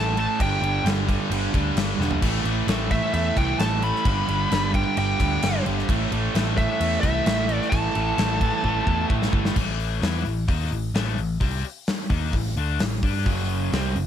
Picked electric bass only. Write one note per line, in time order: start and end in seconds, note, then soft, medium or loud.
0.00 0.25 A1 medium
0.40 0.56 G1 medium
0.62 0.78 G1 medium
0.84 1.16 G1 loud
1.30 1.46 G1 medium
1.54 1.70 D2 medium
1.76 1.92 G1 medium
1.98 2.15 E1 medium
2.22 2.38 A1 loud
2.44 2.60 A1 medium
2.67 2.99 A1 loud
3.14 3.30 E2 medium
3.36 3.52 C2 loud
3.59 3.91 A1 medium
4.05 4.21 G1 loud
4.28 4.44 G1 medium
4.52 4.83 G1 medium
4.97 5.13 G1 medium
5.20 5.36 D2 medium
5.43 5.59 G1 loud
5.66 5.82 G1 loud
5.89 6.05 A1 loud
6.12 6.27 A1 loud
6.35 6.67 A1 loud
6.80 6.96 E2 medium
7.03 7.19 C2 medium
7.26 7.58 A1 medium
7.72 7.88 A1 medium
7.96 8.12 A1 medium
8.18 8.50 A1 loud
8.64 8.80 A1 medium
8.87 9.03 E2 medium
9.10 9.26 A1 medium
9.33 9.49 G1 medium
9.56 9.99 A1 medium
10.02 10.24 E2 loud
10.26 10.47 A1 medium
10.48 10.70 D#2 medium
10.71 10.93 A1 medium
10.94 11.16 A1 medium
11.17 11.39 A1 medium
11.40 11.62 C2 medium
12.10 12.32 D#2 medium
12.33 12.55 A1 medium
12.56 12.78 D2 loud
12.80 13.01 A1 medium
13.03 13.24 G2 loud
13.26 13.69 F#1 medium
13.72 13.94 C2 loud
13.95 14.07 F#1 medium